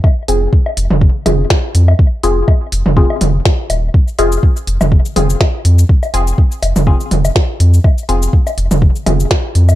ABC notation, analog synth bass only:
X:1
M:4/4
L:1/16
Q:"Swing 16ths" 1/4=123
K:Fm
V:1 name="Analog synth bass" clef=bass
z2 F,,,2 z2 F,,, F,,,2 z F,,,2 z2 F,,2 | z2 F,,,2 z2 F,,, F,,,2 z F,,,2 z2 E,,,2 | z2 F,,,2 z2 F,,, F,,,2 z F,,,2 z2 F,,2 | z2 F,,,2 z2 F,,, F,,,2 z F,,,2 z2 F,,2 |
z2 F,,,2 z2 F,,, F,,,2 z F,,,2 z2 F,,2 |]